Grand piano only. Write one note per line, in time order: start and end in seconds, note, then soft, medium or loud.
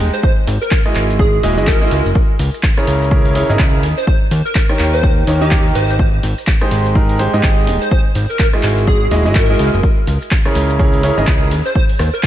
0.00 0.22 G#3 medium
0.00 0.22 D#4 medium
0.00 0.22 G4 medium
0.00 0.22 G#4 medium
0.00 0.22 D#5 medium
0.86 1.41 G#3 medium
0.86 1.41 E4 medium
0.86 1.41 F#4 medium
0.86 1.41 G#4 medium
0.86 1.41 D#5 medium
1.43 1.54 G#3 medium
1.43 1.54 E4 medium
1.43 1.54 F#4 medium
1.43 1.54 G#4 medium
1.43 1.54 D#5 medium
1.57 1.78 G#3 loud
1.57 1.78 E4 medium
1.57 1.78 F#4 medium
1.57 1.78 G#4 medium
1.57 1.78 D#5 loud
1.81 2.01 G#3 medium
1.81 2.01 E4 medium
1.81 2.01 F#4 medium
1.81 2.01 G#4 medium
1.81 2.01 D#5 loud
2.77 3.09 C#3 medium
2.77 3.09 E4 medium
2.77 3.09 G#4 medium
2.77 3.09 A#4 medium
2.77 3.09 C#5 medium
3.11 3.33 C#3 medium
3.11 3.33 E4 medium
3.11 3.33 G#4 medium
3.11 3.33 A#4 medium
3.11 3.33 C#5 loud
3.35 3.46 C#3 medium
3.35 3.46 E4 medium
3.35 3.46 G#4 medium
3.35 3.46 A#4 medium
3.35 3.46 C#5 loud
3.49 3.82 C#3 medium
3.49 3.82 E4 medium
3.49 3.82 G#4 medium
3.49 3.82 A#4 medium
3.49 3.82 D#5 loud
4.69 5.25 D#3 medium
4.69 5.25 D#4 medium
4.69 5.25 G4 medium
4.69 5.25 A#4 medium
4.69 5.25 C#5 medium
5.27 5.39 D#3 medium
5.27 5.39 D#4 medium
5.27 5.39 G4 medium
5.27 5.39 A#4 medium
5.27 5.39 C#5 medium
5.41 5.98 D#3 loud
5.41 5.98 D#4 medium
5.41 5.98 G4 medium
5.41 5.98 A#4 medium
5.41 5.98 D#5 loud
6.61 6.93 G#3 medium
6.61 6.93 D#4 medium
6.61 6.93 G4 medium
6.61 6.93 G#4 medium
6.61 6.93 C5 medium
6.95 7.17 G#3 medium
6.95 7.17 D#4 medium
6.95 7.17 G4 medium
6.95 7.17 G#4 medium
6.95 7.17 A#4 loud
7.19 7.30 G#3 medium
7.19 7.30 D#4 medium
7.19 7.30 G4 medium
7.19 7.30 G#4 medium
7.19 7.30 C5 loud
7.33 7.90 G#3 medium
7.33 7.90 D#4 medium
7.33 7.90 G4 medium
7.33 7.90 G#4 medium
7.33 7.90 D#5 medium
8.53 9.09 G#3 medium
8.53 9.09 E4 medium
8.53 9.09 F#4 medium
8.53 9.09 G#4 medium
8.53 9.09 D#5 medium
9.11 9.22 G#3 medium
9.11 9.22 E4 medium
9.11 9.22 F#4 medium
9.11 9.22 G#4 medium
9.11 9.22 D#5 medium
9.25 9.46 G#3 medium
9.25 9.46 E4 medium
9.25 9.46 F#4 medium
9.25 9.46 G#4 medium
9.25 9.46 D#5 loud
9.49 9.69 G#3 medium
9.49 9.69 E4 medium
9.49 9.69 F#4 medium
9.49 9.69 G#4 medium
9.49 9.69 D#5 loud
10.45 10.77 C#3 medium
10.45 10.77 E4 medium
10.45 10.77 G#4 medium
10.45 10.77 A#4 medium
10.45 10.77 C#5 medium
10.79 11.01 C#3 medium
10.79 11.01 E4 medium
10.79 11.01 G#4 medium
10.79 11.01 A#4 medium
10.79 11.01 C#5 loud
11.03 11.14 C#3 medium
11.03 11.14 E4 medium
11.03 11.14 G#4 medium
11.03 11.14 A#4 medium
11.03 11.14 C#5 loud
11.17 11.50 C#3 medium
11.17 11.50 E4 medium
11.17 11.50 G#4 medium
11.17 11.50 A#4 medium
11.17 11.50 D#5 loud